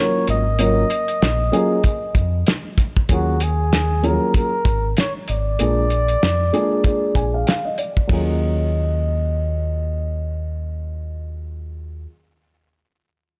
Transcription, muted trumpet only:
0.00 C#5
0.30 D#5
3.13 F#4
3.43 G#4
4.06 A#4
4.37 A#4
5.00 C#5
5.30 D5
8.11 D#5

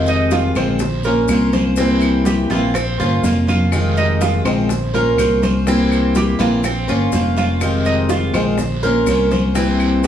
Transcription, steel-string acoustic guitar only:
Already playing: C3 D#3 G#3 C4 F4
0.56 D#3 G#3 C4 F4
0.82 muted steel-string acoustic guitar stroke
1.05 A#3 C#4 F4 C5
1.30 A#3 C#4 F4 C5
1.77 C3 E3 A#3 C4 E4
2.51 E3 A#3 C4 E4
2.76 muted steel-string acoustic guitar stroke
3.00 A#3 C#4 F4 C5
3.24 A#3 C#4 F4 C5
3.72 C3 D#3 G#3 C4 F4
4.46 D#3 G#3 C4 F4
4.70 muted steel-string acoustic guitar stroke
4.94 A#3 C#4 F4 C5
5.17 A#3 C#4 F4 C5
5.66 C3 E3 A#3 C4 E4
6.39 E3 A#3 C4 E4
6.63 muted steel-string acoustic guitar stroke
6.88 A#3 C#4 F4 C5
7.13 A#3 C#4 F4 C5
7.60 C3 D#3 G#3 C4 F4
8.34 D#3 G#3 C4 F4
8.59 muted steel-string acoustic guitar stroke
8.83 A#3 C#4 F4 C5
9.08 A#3 C#4 F4 C5
9.55 C3 E3 A#3 C4 E4

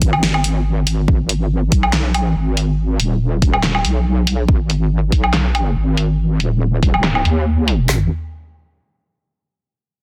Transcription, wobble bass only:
Already playing: G#1
0.23 G#1
1.08 G#1
1.72 B1
2.16 A#1
2.36 G#1
3.00 D#1
3.85 B1
4.48 G#1
5.12 B1
5.76 G#1
6.40 D#1
6.99 D1
7.25 D#2
7.89 G#1

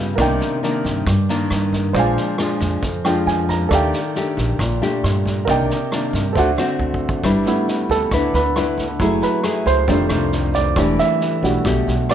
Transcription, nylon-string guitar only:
Already playing: C#3 G3 B3 F4
0.18 C3 D#3 A#3 D4
0.63 D#3 A#3 D4
1.07 G2
1.29 D#3 A#3 D4
1.96 A#2 F3 G#3 D4
2.40 F3 G#3 D4
2.83 F2
3.05 F3 G#3 D4
3.72 D#3 A3 D4 G4
4.16 A3 D4 G4
4.61 A#2
4.82 A3 D4 G4
5.48 C3 D#3 A#3 D4
5.92 D#3 A#3 D4
6.37 D3 A3 C4 F#4
6.58 A3 C4 F#4
7.24 G3 D4 E4 B4
8.12 D3 D4 E4 B4
8.57 D4 E4 B4
9.00 F#3 A3 E4 G#4
9.43 A3 E4 G#4
9.88 F2 D#3 A3 D4
10.11 D#3 A3 D4
10.77 E3 A3 D4 G4
11.65 B2 A3 D4 G4
12.10 A3 D4 G4

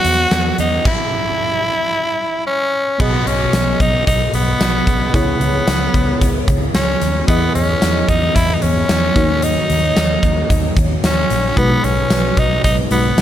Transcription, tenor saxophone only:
Already playing: F#4
0.60 D#4
0.87 E4
2.46 C#4
3.00 B3
3.27 C#4
3.81 D#4
4.07 D#4
4.34 B3
5.15 B3
6.75 C#4
7.27 B3
7.55 C#4
8.08 D#4
8.35 E4
8.55 D#4
8.62 C#4
9.43 D#4
11.04 C#4
11.57 B3
11.84 C#4
12.38 D#4
12.64 D#4
12.91 B3

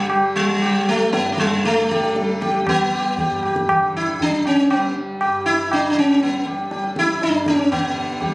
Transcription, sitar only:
0.09 G4
0.36 G3
0.62 G4
0.89 A3
1.12 B3
1.32 A3
1.40 G3
1.65 A3
1.91 G4
2.41 G4
2.69 B3
2.95 G4
3.19 G4
3.45 G4
3.69 G4
3.97 E4
4.22 D4
4.47 C#4
4.70 B3
5.22 G4
5.46 E4
5.73 D4
5.90 D4
5.98 C#4
6.23 B3
6.47 G4
6.72 G4
6.99 E4
7.23 D4
7.48 C#4
7.72 B3
8.21 G4

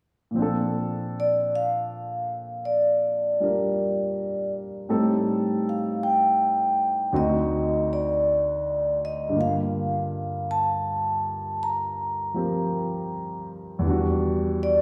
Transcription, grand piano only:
0.31 A#2 F3
0.36 C4 D4
0.42 A4
3.40 G3 D4 F4 A#4
4.89 A2 G3 C4 D#4 A4
7.13 D2 D3 C4 D#4 F#4
9.29 G2 D3
9.36 A#3 F4
12.34 F3 C4 G4 A#4
13.79 E2 E3
13.84 G3 D4
13.90 F#4

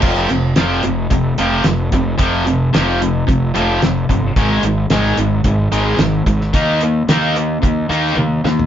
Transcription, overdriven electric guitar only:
0.02 F2 C3 F3
0.30 F2 C3
0.56 F2 C3 F3
0.84 F2 C3
1.10 F2 C3
1.38 F2 C3 F3
1.66 F2 C3
1.92 F2 C3
2.18 F2 C3 F3
2.46 F2 C3
2.73 F2 C3 F3
3.01 F2 C3
3.27 F2 C3
3.54 F2 C3 F3
3.82 F2 C3
4.09 F2 C3
4.36 G#2 D#3 G#3
4.63 G#2 D#3
4.90 G#2 D#3 G#3
5.18 G#2 D#3
5.45 G#2 D#3
5.72 G#2 D#3 G#3
5.97 G#2 D#3
6.26 G#2 D#3
6.53 D#3 A#3 D#4
6.82 D#3 A#3
7.09 D#3 A#3 D#4
7.36 D#3 A#3
7.62 D#3 A#3
7.89 D#3 A#3 D#4
8.16 D#3 A#3
8.44 D#3 A#3

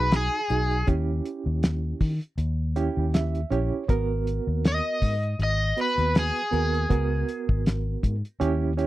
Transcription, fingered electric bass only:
Already playing: B1
0.50 B1
0.88 D#2
1.46 D#2
2.01 D#3
2.38 D#2
2.97 D#2
3.51 A#1
3.89 G#1
4.47 D#2
5.02 G#2
5.39 G#1
5.98 D#2
6.53 D#2
6.90 C#2
7.49 G#1
8.03 G#2
8.41 D#2

